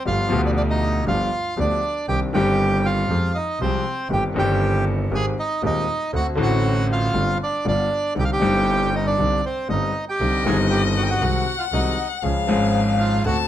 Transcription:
0.05 grand piano G1 G2 F3 B3 D4 G4, double bass G1, bandoneon F4 F5
0.28 grand piano D2 B2 F3 B3 F4 G4, double bass D2
0.46 bandoneon D4 D5
0.57 bandoneon D4 D5
0.70 bandoneon D#4 D#5
1.06 double bass G1, grand piano G1 G2 F3 B3 D4 G4, bandoneon F4 F5
1.57 double bass D2, grand piano D2 D3 F3 B3 D4 G4, bandoneon D4 D5
2.08 double bass C2, grand piano C2 C3 D#3 C4 D4 G4, bandoneon G4 G5
2.33 double bass G1, grand piano G1 G2 D#3 C4 D4, bandoneon G4 G5
2.37 grand piano G4
2.85 bandoneon F4 F5
3.09 double bass F2, grand piano F2 F3 G#3 C4 G4
3.35 bandoneon D#4 D#5
3.59 double bass C2, grand piano C2 C3 F3 G#3 C4 G4, bandoneon C4 C5
4.10 double bass G1, grand piano G1 G2 D#3 C4 D4 G4, bandoneon G4 G5
4.34 double bass G1, grand piano G1 G2 D#3 C4 D4 G4
4.39 bandoneon G4 G5
5.11 double bass G#1, grand piano G#1 G#2 D#3 G#3 C4 G4, bandoneon G#5
5.15 bandoneon G#4
5.39 bandoneon D#4 D#5
5.62 grand piano D#1 D#2 D#3 G#3 C4 G4, double bass D#2, bandoneon D#4 D#5
6.13 double bass D2, grand piano D2 D3 A3 C4 F#4, bandoneon F#4 F#5
6.35 grand piano A1 A2 D3 A3 C4, double bass A1
6.40 grand piano F#4, bandoneon F#4 F#5
6.92 bandoneon F4 F5
7.14 grand piano G1 G2 D3 G3 C4 F4, double bass G1
7.43 bandoneon D4 D5
7.65 grand piano G1 G2 D3 G3 B3 F4, double bass G1, bandoneon D4 D5
8.15 grand piano C2 C3 D3 G3 C4 D#4, double bass C2
8.19 bandoneon G4 G5
8.25 bandoneon F5
8.32 bandoneon G4 G5
8.39 grand piano G1 G2 G3 C4 D4, double bass G1
8.44 grand piano D#4
8.96 bandoneon D#4 D#5
9.07 bandoneon D4 D5
9.18 grand piano C2 C3 D3 G3 C4 D#4, double bass C2
9.46 bandoneon C4 C5
9.69 grand piano G1 G2 D3 G3 C4 D#4, double bass G1, bandoneon D#4 D#5
10.09 bandoneon G4 G5
10.20 double bass C2, grand piano C2 C3 D3 G3 C4 D#4, violin D#5
10.44 double bass G1, grand piano G1 G2 D#3 G3 C4, bandoneon G#4 G#5
10.48 grand piano D#4
10.70 bandoneon G4 G5
10.97 bandoneon F#4 F#5
11.03 bandoneon G5
11.10 bandoneon F#4 F#5
11.20 double bass C2, grand piano C2 C3 D#3 G#3 C4 F#4, violin F#5
11.59 bandoneon F4 F5
11.72 double bass C2, grand piano C2 C3 D#3 G#3 C4 F#4, bandoneon D#4 D#5
12.23 double bass C#2, grand piano C#2 C#3 F3 G#3 C#4 G#4, violin F5
12.47 double bass G#1, grand piano G#1 G#2 F3 G#3 C#4
12.51 grand piano G#4
12.99 bandoneon F4 F5
13.24 double bass D2, grand piano D2 D3 A3 C4 F#4, bandoneon F#4 F#5, violin A5

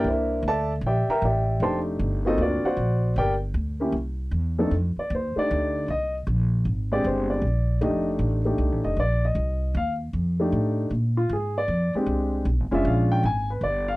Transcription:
Already playing: grand piano A#3 D4
0.04 upright bass C2, grand piano E5
0.08 grand piano E4 A#4 C5
0.42 upright bass D2
0.48 grand piano A4 D5 E5 A5
0.81 upright bass A#1
0.86 grand piano G4 D5 E5 G5
1.08 grand piano A#4 E5 G5 A#5, muted upright bass stroke
1.22 upright bass A1, grand piano G4 D5 E5 G5
1.60 upright bass F1, grand piano A3 D4 D#4 G4 C5 G5 A5 C6
1.99 upright bass G1
2.25 grand piano A#3 C4 D#4 F4 F#4 A4 C5 D#5
2.38 upright bass D2
2.42 grand piano D4 F#4 A#4 D5
2.64 grand piano F#4 C5 D5 F#5, muted upright bass stroke
2.77 upright bass A#1
3.16 upright bass G1, grand piano G4 A#4 D5 G5
3.54 upright bass D2
3.80 grand piano A#3 C#4 E4 G4
3.92 upright bass C2
4.31 upright bass E2
4.59 grand piano F2 A3 D4 D#4 A4
4.71 upright bass F2
4.97 grand piano D5, muted upright bass stroke
5.10 upright bass D#2
5.15 grand piano C5
5.36 grand piano A3 D4 D#4 G4 D5, muted upright bass stroke
5.51 upright bass D2
5.88 upright bass C2, grand piano D#5
6.27 upright bass A#1
6.65 upright bass G#1
6.92 grand piano G#3 C4 D4 G4 D5
7.04 upright bass G1, grand piano C5
7.30 grand piano D5
7.42 upright bass A#1
7.81 upright bass F1, grand piano A3 D4 D#4 G4 D#5
8.19 upright bass A1
8.45 grand piano A3 D4 D#4 G4
8.58 upright bass C2
8.71 upright bass A1
8.84 upright bass F1, grand piano D#5
8.96 upright bass A#1, grand piano D5
9.25 grand piano D#5
9.35 upright bass C2
9.74 upright bass D#2, grand piano F5
10.13 upright bass F2
10.40 grand piano A3 D4 D#4 G4
10.52 upright bass A2
10.90 upright bass A#2
11.17 grand piano F4
11.29 upright bass G#2, grand piano G#4
11.58 grand piano D5
11.68 upright bass F2
11.94 grand piano G#3 C4 D4 G4, muted upright bass stroke
12.06 upright bass C2
12.45 upright bass B1
12.60 upright bass G#1
12.71 upright bass F1, grand piano G#3 C#4 D4 F4 E5
12.85 upright bass A#1, grand piano F5
13.12 grand piano G5
13.23 upright bass G#1, grand piano G#5
13.50 grand piano B4
13.61 upright bass G1, grand piano D5
13.88 grand piano F5

